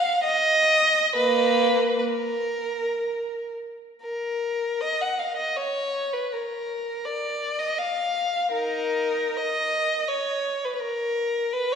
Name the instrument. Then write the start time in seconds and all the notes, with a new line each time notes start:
violin
Already playing: F5
0.24 D#5
1.16 A#3 B4
1.99 B4
2.08 A#4
4.03 A#4
4.81 D#5
5.01 F#5
5.19 F5
5.37 D#5
5.57 C#5
6.13 B4
6.32 A#4
7.05 D5
7.59 D#5
7.79 F5
8.52 D#4 A#4
9.37 D#5
10.08 C#5
10.65 B4
10.75 B4
10.80 A#4
11.53 B4
11.72 C#5